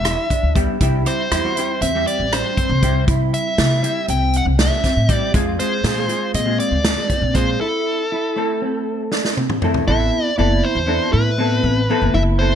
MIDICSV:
0, 0, Header, 1, 6, 480
1, 0, Start_track
1, 0, Tempo, 503356
1, 776, Time_signature, 9, 3, 24, 8
1, 11969, End_track
2, 0, Start_track
2, 0, Title_t, "Lead electric guitar"
2, 0, Program_c, 0, 29
2, 0, Note_on_c, 0, 76, 73
2, 504, Note_off_c, 0, 76, 0
2, 1025, Note_on_c, 0, 72, 79
2, 1733, Note_on_c, 0, 76, 78
2, 1762, Note_off_c, 0, 72, 0
2, 1972, Note_off_c, 0, 76, 0
2, 1976, Note_on_c, 0, 74, 80
2, 2222, Note_on_c, 0, 72, 61
2, 2224, Note_off_c, 0, 74, 0
2, 2902, Note_off_c, 0, 72, 0
2, 3184, Note_on_c, 0, 76, 72
2, 3863, Note_off_c, 0, 76, 0
2, 3909, Note_on_c, 0, 79, 87
2, 4150, Note_off_c, 0, 79, 0
2, 4169, Note_on_c, 0, 78, 82
2, 4230, Note_off_c, 0, 78, 0
2, 4398, Note_on_c, 0, 76, 69
2, 4894, Note_off_c, 0, 76, 0
2, 4894, Note_on_c, 0, 74, 69
2, 5070, Note_off_c, 0, 74, 0
2, 5335, Note_on_c, 0, 72, 89
2, 6019, Note_off_c, 0, 72, 0
2, 6054, Note_on_c, 0, 75, 84
2, 6285, Note_off_c, 0, 75, 0
2, 6289, Note_on_c, 0, 74, 89
2, 7012, Note_on_c, 0, 72, 81
2, 7036, Note_off_c, 0, 74, 0
2, 7252, Note_off_c, 0, 72, 0
2, 7255, Note_on_c, 0, 69, 71
2, 8900, Note_off_c, 0, 69, 0
2, 9418, Note_on_c, 0, 76, 98
2, 9865, Note_off_c, 0, 76, 0
2, 9907, Note_on_c, 0, 74, 92
2, 10142, Note_on_c, 0, 72, 88
2, 10151, Note_off_c, 0, 74, 0
2, 10587, Note_off_c, 0, 72, 0
2, 10613, Note_on_c, 0, 71, 81
2, 11581, Note_on_c, 0, 76, 99
2, 11604, Note_off_c, 0, 71, 0
2, 11645, Note_off_c, 0, 76, 0
2, 11813, Note_on_c, 0, 72, 77
2, 11969, Note_off_c, 0, 72, 0
2, 11969, End_track
3, 0, Start_track
3, 0, Title_t, "Clean electric guitar"
3, 0, Program_c, 1, 27
3, 46, Note_on_c, 1, 64, 63
3, 241, Note_off_c, 1, 64, 0
3, 287, Note_on_c, 1, 62, 61
3, 673, Note_off_c, 1, 62, 0
3, 771, Note_on_c, 1, 64, 68
3, 1156, Note_off_c, 1, 64, 0
3, 1255, Note_on_c, 1, 64, 66
3, 1638, Note_off_c, 1, 64, 0
3, 1740, Note_on_c, 1, 60, 72
3, 2121, Note_off_c, 1, 60, 0
3, 2222, Note_on_c, 1, 62, 71
3, 2411, Note_off_c, 1, 62, 0
3, 2461, Note_on_c, 1, 60, 64
3, 2842, Note_off_c, 1, 60, 0
3, 2937, Note_on_c, 1, 64, 69
3, 3320, Note_off_c, 1, 64, 0
3, 3413, Note_on_c, 1, 64, 71
3, 3797, Note_off_c, 1, 64, 0
3, 3895, Note_on_c, 1, 60, 69
3, 4278, Note_off_c, 1, 60, 0
3, 4370, Note_on_c, 1, 62, 72
3, 4564, Note_off_c, 1, 62, 0
3, 4612, Note_on_c, 1, 60, 65
3, 4997, Note_off_c, 1, 60, 0
3, 5098, Note_on_c, 1, 65, 75
3, 5480, Note_off_c, 1, 65, 0
3, 5574, Note_on_c, 1, 65, 73
3, 5958, Note_off_c, 1, 65, 0
3, 6050, Note_on_c, 1, 60, 69
3, 6436, Note_off_c, 1, 60, 0
3, 6537, Note_on_c, 1, 62, 68
3, 6729, Note_off_c, 1, 62, 0
3, 6777, Note_on_c, 1, 60, 63
3, 7160, Note_off_c, 1, 60, 0
3, 7255, Note_on_c, 1, 64, 66
3, 7639, Note_off_c, 1, 64, 0
3, 7742, Note_on_c, 1, 64, 69
3, 8123, Note_off_c, 1, 64, 0
3, 8215, Note_on_c, 1, 60, 68
3, 8600, Note_off_c, 1, 60, 0
3, 8693, Note_on_c, 1, 62, 65
3, 8887, Note_off_c, 1, 62, 0
3, 8926, Note_on_c, 1, 60, 61
3, 9314, Note_off_c, 1, 60, 0
3, 9413, Note_on_c, 1, 64, 72
3, 9798, Note_off_c, 1, 64, 0
3, 9895, Note_on_c, 1, 64, 79
3, 10279, Note_off_c, 1, 64, 0
3, 10375, Note_on_c, 1, 62, 76
3, 10568, Note_off_c, 1, 62, 0
3, 10608, Note_on_c, 1, 64, 75
3, 10804, Note_off_c, 1, 64, 0
3, 10852, Note_on_c, 1, 60, 81
3, 11237, Note_off_c, 1, 60, 0
3, 11577, Note_on_c, 1, 64, 75
3, 11959, Note_off_c, 1, 64, 0
3, 11969, End_track
4, 0, Start_track
4, 0, Title_t, "Hollow-body jazz guitar"
4, 0, Program_c, 2, 26
4, 0, Note_on_c, 2, 55, 58
4, 0, Note_on_c, 2, 59, 52
4, 0, Note_on_c, 2, 64, 54
4, 0, Note_on_c, 2, 67, 62
4, 129, Note_off_c, 2, 55, 0
4, 132, Note_off_c, 2, 59, 0
4, 135, Note_off_c, 2, 64, 0
4, 139, Note_off_c, 2, 67, 0
4, 525, Note_on_c, 2, 55, 72
4, 527, Note_on_c, 2, 59, 66
4, 531, Note_on_c, 2, 64, 71
4, 536, Note_on_c, 2, 67, 78
4, 730, Note_off_c, 2, 59, 0
4, 731, Note_off_c, 2, 55, 0
4, 733, Note_off_c, 2, 64, 0
4, 736, Note_off_c, 2, 67, 0
4, 776, Note_on_c, 2, 55, 78
4, 782, Note_on_c, 2, 60, 67
4, 785, Note_on_c, 2, 64, 76
4, 790, Note_on_c, 2, 67, 87
4, 976, Note_off_c, 2, 55, 0
4, 979, Note_off_c, 2, 60, 0
4, 980, Note_off_c, 2, 64, 0
4, 983, Note_off_c, 2, 67, 0
4, 1003, Note_on_c, 2, 55, 57
4, 1010, Note_on_c, 2, 60, 57
4, 1017, Note_on_c, 2, 64, 51
4, 1025, Note_on_c, 2, 67, 66
4, 1209, Note_off_c, 2, 55, 0
4, 1213, Note_off_c, 2, 60, 0
4, 1216, Note_off_c, 2, 64, 0
4, 1220, Note_off_c, 2, 67, 0
4, 1265, Note_on_c, 2, 55, 59
4, 1269, Note_on_c, 2, 60, 55
4, 1274, Note_on_c, 2, 64, 53
4, 1275, Note_on_c, 2, 67, 65
4, 1360, Note_off_c, 2, 55, 0
4, 1363, Note_off_c, 2, 60, 0
4, 1364, Note_off_c, 2, 64, 0
4, 1365, Note_off_c, 2, 67, 0
4, 1373, Note_on_c, 2, 55, 56
4, 1378, Note_on_c, 2, 60, 53
4, 1385, Note_on_c, 2, 64, 49
4, 1388, Note_on_c, 2, 66, 66
4, 1474, Note_off_c, 2, 55, 0
4, 1478, Note_off_c, 2, 60, 0
4, 1479, Note_off_c, 2, 64, 0
4, 1482, Note_off_c, 2, 66, 0
4, 1498, Note_on_c, 2, 55, 57
4, 1504, Note_on_c, 2, 60, 57
4, 1506, Note_on_c, 2, 64, 57
4, 1516, Note_on_c, 2, 67, 69
4, 1796, Note_off_c, 2, 55, 0
4, 1800, Note_off_c, 2, 60, 0
4, 1800, Note_off_c, 2, 64, 0
4, 1806, Note_off_c, 2, 67, 0
4, 1860, Note_on_c, 2, 55, 65
4, 1865, Note_on_c, 2, 64, 58
4, 1866, Note_on_c, 2, 60, 58
4, 1872, Note_on_c, 2, 67, 75
4, 2557, Note_off_c, 2, 55, 0
4, 2558, Note_off_c, 2, 64, 0
4, 2560, Note_off_c, 2, 60, 0
4, 2563, Note_off_c, 2, 67, 0
4, 2691, Note_on_c, 2, 55, 71
4, 2695, Note_on_c, 2, 60, 62
4, 2701, Note_on_c, 2, 64, 66
4, 2707, Note_on_c, 2, 67, 79
4, 3492, Note_off_c, 2, 55, 0
4, 3495, Note_off_c, 2, 60, 0
4, 3498, Note_off_c, 2, 64, 0
4, 3500, Note_off_c, 2, 67, 0
4, 3644, Note_on_c, 2, 55, 61
4, 3648, Note_on_c, 2, 60, 55
4, 3654, Note_on_c, 2, 64, 54
4, 3660, Note_on_c, 2, 67, 62
4, 4450, Note_off_c, 2, 55, 0
4, 4450, Note_off_c, 2, 60, 0
4, 4454, Note_off_c, 2, 64, 0
4, 4457, Note_off_c, 2, 67, 0
4, 4848, Note_on_c, 2, 55, 65
4, 4853, Note_on_c, 2, 60, 62
4, 4855, Note_on_c, 2, 64, 60
4, 4858, Note_on_c, 2, 67, 73
4, 5053, Note_off_c, 2, 55, 0
4, 5054, Note_off_c, 2, 60, 0
4, 5056, Note_off_c, 2, 64, 0
4, 5056, Note_off_c, 2, 67, 0
4, 5093, Note_on_c, 2, 56, 83
4, 5099, Note_on_c, 2, 60, 75
4, 5105, Note_on_c, 2, 65, 73
4, 5110, Note_on_c, 2, 68, 86
4, 5295, Note_off_c, 2, 56, 0
4, 5298, Note_off_c, 2, 60, 0
4, 5302, Note_off_c, 2, 65, 0
4, 5303, Note_off_c, 2, 68, 0
4, 5333, Note_on_c, 2, 56, 63
4, 5338, Note_on_c, 2, 60, 61
4, 5340, Note_on_c, 2, 65, 57
4, 5346, Note_on_c, 2, 68, 69
4, 5536, Note_off_c, 2, 56, 0
4, 5537, Note_off_c, 2, 60, 0
4, 5539, Note_off_c, 2, 65, 0
4, 5542, Note_off_c, 2, 68, 0
4, 5574, Note_on_c, 2, 56, 62
4, 5575, Note_on_c, 2, 60, 60
4, 5579, Note_on_c, 2, 65, 59
4, 5586, Note_on_c, 2, 68, 71
4, 5676, Note_off_c, 2, 56, 0
4, 5676, Note_off_c, 2, 60, 0
4, 5678, Note_off_c, 2, 65, 0
4, 5682, Note_off_c, 2, 68, 0
4, 5691, Note_on_c, 2, 60, 50
4, 5692, Note_on_c, 2, 56, 54
4, 5699, Note_on_c, 2, 65, 54
4, 5705, Note_on_c, 2, 68, 61
4, 5785, Note_off_c, 2, 56, 0
4, 5794, Note_off_c, 2, 60, 0
4, 5796, Note_on_c, 2, 56, 64
4, 5799, Note_off_c, 2, 65, 0
4, 5801, Note_off_c, 2, 68, 0
4, 5805, Note_on_c, 2, 60, 61
4, 5809, Note_on_c, 2, 65, 57
4, 5814, Note_on_c, 2, 68, 71
4, 6107, Note_off_c, 2, 56, 0
4, 6111, Note_off_c, 2, 60, 0
4, 6114, Note_off_c, 2, 65, 0
4, 6114, Note_off_c, 2, 68, 0
4, 6154, Note_on_c, 2, 56, 70
4, 6159, Note_on_c, 2, 60, 59
4, 6165, Note_on_c, 2, 65, 64
4, 6174, Note_on_c, 2, 68, 72
4, 6866, Note_off_c, 2, 56, 0
4, 6867, Note_off_c, 2, 60, 0
4, 6871, Note_off_c, 2, 65, 0
4, 6875, Note_off_c, 2, 68, 0
4, 6998, Note_on_c, 2, 56, 66
4, 7003, Note_on_c, 2, 60, 64
4, 7009, Note_on_c, 2, 65, 64
4, 7014, Note_on_c, 2, 68, 73
4, 7249, Note_off_c, 2, 56, 0
4, 7251, Note_off_c, 2, 60, 0
4, 7255, Note_off_c, 2, 65, 0
4, 7256, Note_off_c, 2, 68, 0
4, 7972, Note_on_c, 2, 57, 67
4, 7982, Note_on_c, 2, 60, 60
4, 7986, Note_on_c, 2, 64, 61
4, 7991, Note_on_c, 2, 69, 74
4, 8774, Note_off_c, 2, 57, 0
4, 8780, Note_off_c, 2, 60, 0
4, 8781, Note_off_c, 2, 64, 0
4, 8784, Note_off_c, 2, 69, 0
4, 9178, Note_on_c, 2, 57, 76
4, 9184, Note_on_c, 2, 60, 70
4, 9189, Note_on_c, 2, 64, 72
4, 9193, Note_on_c, 2, 69, 86
4, 9379, Note_off_c, 2, 57, 0
4, 9381, Note_off_c, 2, 60, 0
4, 9384, Note_off_c, 2, 64, 0
4, 9385, Note_off_c, 2, 69, 0
4, 9429, Note_on_c, 2, 59, 76
4, 9431, Note_on_c, 2, 60, 74
4, 9434, Note_on_c, 2, 64, 67
4, 9439, Note_on_c, 2, 69, 86
4, 9824, Note_off_c, 2, 59, 0
4, 9824, Note_off_c, 2, 60, 0
4, 9826, Note_off_c, 2, 64, 0
4, 9829, Note_off_c, 2, 69, 0
4, 9895, Note_on_c, 2, 59, 70
4, 9899, Note_on_c, 2, 60, 65
4, 9904, Note_on_c, 2, 64, 64
4, 9909, Note_on_c, 2, 69, 76
4, 10297, Note_off_c, 2, 59, 0
4, 10299, Note_off_c, 2, 64, 0
4, 10300, Note_off_c, 2, 60, 0
4, 10303, Note_off_c, 2, 69, 0
4, 10359, Note_on_c, 2, 59, 70
4, 10369, Note_on_c, 2, 60, 65
4, 10369, Note_on_c, 2, 64, 63
4, 10379, Note_on_c, 2, 69, 78
4, 10768, Note_off_c, 2, 59, 0
4, 10772, Note_off_c, 2, 64, 0
4, 10774, Note_off_c, 2, 60, 0
4, 10778, Note_off_c, 2, 69, 0
4, 10854, Note_on_c, 2, 59, 67
4, 10859, Note_on_c, 2, 60, 63
4, 10865, Note_on_c, 2, 64, 66
4, 10872, Note_on_c, 2, 69, 71
4, 11255, Note_off_c, 2, 59, 0
4, 11258, Note_off_c, 2, 60, 0
4, 11261, Note_off_c, 2, 64, 0
4, 11264, Note_off_c, 2, 69, 0
4, 11346, Note_on_c, 2, 59, 94
4, 11350, Note_on_c, 2, 60, 88
4, 11354, Note_on_c, 2, 64, 85
4, 11354, Note_on_c, 2, 69, 105
4, 11741, Note_off_c, 2, 59, 0
4, 11743, Note_off_c, 2, 60, 0
4, 11745, Note_off_c, 2, 64, 0
4, 11745, Note_off_c, 2, 69, 0
4, 11816, Note_on_c, 2, 59, 63
4, 11822, Note_on_c, 2, 60, 64
4, 11828, Note_on_c, 2, 64, 62
4, 11833, Note_on_c, 2, 69, 73
4, 11969, Note_off_c, 2, 59, 0
4, 11969, Note_off_c, 2, 60, 0
4, 11969, Note_off_c, 2, 64, 0
4, 11969, Note_off_c, 2, 69, 0
4, 11969, End_track
5, 0, Start_track
5, 0, Title_t, "Upright bass"
5, 0, Program_c, 3, 32
5, 0, Note_on_c, 3, 28, 66
5, 137, Note_off_c, 3, 28, 0
5, 411, Note_on_c, 3, 38, 63
5, 619, Note_off_c, 3, 38, 0
5, 770, Note_on_c, 3, 36, 75
5, 979, Note_off_c, 3, 36, 0
5, 1252, Note_on_c, 3, 40, 74
5, 1461, Note_off_c, 3, 40, 0
5, 1728, Note_on_c, 3, 40, 78
5, 1938, Note_off_c, 3, 40, 0
5, 2089, Note_on_c, 3, 33, 68
5, 2299, Note_off_c, 3, 33, 0
5, 2570, Note_on_c, 3, 36, 83
5, 2883, Note_off_c, 3, 36, 0
5, 2933, Note_on_c, 3, 48, 81
5, 3142, Note_off_c, 3, 48, 0
5, 3415, Note_on_c, 3, 48, 79
5, 3623, Note_off_c, 3, 48, 0
5, 3894, Note_on_c, 3, 36, 66
5, 4205, Note_off_c, 3, 36, 0
5, 4251, Note_on_c, 3, 36, 74
5, 4461, Note_off_c, 3, 36, 0
5, 4734, Note_on_c, 3, 45, 71
5, 4943, Note_off_c, 3, 45, 0
5, 5093, Note_on_c, 3, 41, 80
5, 5302, Note_off_c, 3, 41, 0
5, 5565, Note_on_c, 3, 46, 75
5, 5778, Note_off_c, 3, 46, 0
5, 6044, Note_on_c, 3, 46, 78
5, 6257, Note_off_c, 3, 46, 0
5, 6399, Note_on_c, 3, 38, 68
5, 6614, Note_off_c, 3, 38, 0
5, 6880, Note_on_c, 3, 34, 78
5, 7198, Note_off_c, 3, 34, 0
5, 9418, Note_on_c, 3, 33, 82
5, 9625, Note_off_c, 3, 33, 0
5, 9903, Note_on_c, 3, 30, 79
5, 10108, Note_off_c, 3, 30, 0
5, 10253, Note_on_c, 3, 40, 77
5, 10463, Note_off_c, 3, 40, 0
5, 10617, Note_on_c, 3, 45, 79
5, 11031, Note_off_c, 3, 45, 0
5, 11095, Note_on_c, 3, 33, 86
5, 11303, Note_off_c, 3, 33, 0
5, 11459, Note_on_c, 3, 30, 79
5, 11562, Note_off_c, 3, 30, 0
5, 11579, Note_on_c, 3, 30, 83
5, 11969, Note_off_c, 3, 30, 0
5, 11969, End_track
6, 0, Start_track
6, 0, Title_t, "Drums"
6, 48, Note_on_c, 9, 37, 88
6, 48, Note_on_c, 9, 42, 67
6, 143, Note_off_c, 9, 37, 0
6, 143, Note_off_c, 9, 42, 0
6, 290, Note_on_c, 9, 36, 59
6, 293, Note_on_c, 9, 42, 48
6, 385, Note_off_c, 9, 36, 0
6, 389, Note_off_c, 9, 42, 0
6, 530, Note_on_c, 9, 36, 69
6, 534, Note_on_c, 9, 42, 54
6, 625, Note_off_c, 9, 36, 0
6, 629, Note_off_c, 9, 42, 0
6, 770, Note_on_c, 9, 42, 73
6, 771, Note_on_c, 9, 36, 81
6, 866, Note_off_c, 9, 36, 0
6, 866, Note_off_c, 9, 42, 0
6, 1010, Note_on_c, 9, 42, 54
6, 1106, Note_off_c, 9, 42, 0
6, 1256, Note_on_c, 9, 37, 90
6, 1256, Note_on_c, 9, 42, 72
6, 1351, Note_off_c, 9, 37, 0
6, 1351, Note_off_c, 9, 42, 0
6, 1496, Note_on_c, 9, 42, 57
6, 1591, Note_off_c, 9, 42, 0
6, 1733, Note_on_c, 9, 42, 73
6, 1829, Note_off_c, 9, 42, 0
6, 1977, Note_on_c, 9, 42, 49
6, 2073, Note_off_c, 9, 42, 0
6, 2219, Note_on_c, 9, 37, 90
6, 2219, Note_on_c, 9, 42, 68
6, 2314, Note_off_c, 9, 37, 0
6, 2314, Note_off_c, 9, 42, 0
6, 2455, Note_on_c, 9, 36, 61
6, 2456, Note_on_c, 9, 42, 45
6, 2550, Note_off_c, 9, 36, 0
6, 2552, Note_off_c, 9, 42, 0
6, 2696, Note_on_c, 9, 36, 70
6, 2696, Note_on_c, 9, 42, 54
6, 2791, Note_off_c, 9, 36, 0
6, 2791, Note_off_c, 9, 42, 0
6, 2936, Note_on_c, 9, 36, 96
6, 2937, Note_on_c, 9, 42, 66
6, 3031, Note_off_c, 9, 36, 0
6, 3032, Note_off_c, 9, 42, 0
6, 3182, Note_on_c, 9, 42, 51
6, 3277, Note_off_c, 9, 42, 0
6, 3417, Note_on_c, 9, 38, 91
6, 3417, Note_on_c, 9, 42, 67
6, 3513, Note_off_c, 9, 38, 0
6, 3513, Note_off_c, 9, 42, 0
6, 3659, Note_on_c, 9, 42, 51
6, 3755, Note_off_c, 9, 42, 0
6, 3893, Note_on_c, 9, 42, 68
6, 3988, Note_off_c, 9, 42, 0
6, 4133, Note_on_c, 9, 42, 46
6, 4229, Note_off_c, 9, 42, 0
6, 4376, Note_on_c, 9, 38, 92
6, 4376, Note_on_c, 9, 42, 70
6, 4472, Note_off_c, 9, 38, 0
6, 4472, Note_off_c, 9, 42, 0
6, 4614, Note_on_c, 9, 36, 56
6, 4617, Note_on_c, 9, 38, 29
6, 4617, Note_on_c, 9, 42, 52
6, 4709, Note_off_c, 9, 36, 0
6, 4712, Note_off_c, 9, 38, 0
6, 4712, Note_off_c, 9, 42, 0
6, 4853, Note_on_c, 9, 36, 73
6, 4857, Note_on_c, 9, 42, 60
6, 4948, Note_off_c, 9, 36, 0
6, 4952, Note_off_c, 9, 42, 0
6, 5093, Note_on_c, 9, 36, 93
6, 5097, Note_on_c, 9, 42, 76
6, 5189, Note_off_c, 9, 36, 0
6, 5192, Note_off_c, 9, 42, 0
6, 5336, Note_on_c, 9, 42, 56
6, 5431, Note_off_c, 9, 42, 0
6, 5573, Note_on_c, 9, 38, 93
6, 5573, Note_on_c, 9, 42, 75
6, 5668, Note_off_c, 9, 38, 0
6, 5668, Note_off_c, 9, 42, 0
6, 5808, Note_on_c, 9, 42, 54
6, 5904, Note_off_c, 9, 42, 0
6, 6048, Note_on_c, 9, 42, 71
6, 6143, Note_off_c, 9, 42, 0
6, 6291, Note_on_c, 9, 42, 50
6, 6387, Note_off_c, 9, 42, 0
6, 6528, Note_on_c, 9, 38, 96
6, 6528, Note_on_c, 9, 42, 71
6, 6623, Note_off_c, 9, 38, 0
6, 6623, Note_off_c, 9, 42, 0
6, 6768, Note_on_c, 9, 36, 58
6, 6768, Note_on_c, 9, 42, 47
6, 6863, Note_off_c, 9, 36, 0
6, 6863, Note_off_c, 9, 42, 0
6, 7007, Note_on_c, 9, 36, 72
6, 7007, Note_on_c, 9, 42, 57
6, 7103, Note_off_c, 9, 36, 0
6, 7103, Note_off_c, 9, 42, 0
6, 8694, Note_on_c, 9, 38, 47
6, 8789, Note_off_c, 9, 38, 0
6, 8819, Note_on_c, 9, 38, 45
6, 8914, Note_off_c, 9, 38, 0
6, 8937, Note_on_c, 9, 48, 52
6, 9033, Note_off_c, 9, 48, 0
6, 9055, Note_on_c, 9, 47, 59
6, 9151, Note_off_c, 9, 47, 0
6, 9173, Note_on_c, 9, 45, 80
6, 9269, Note_off_c, 9, 45, 0
6, 9291, Note_on_c, 9, 43, 66
6, 9386, Note_off_c, 9, 43, 0
6, 11969, End_track
0, 0, End_of_file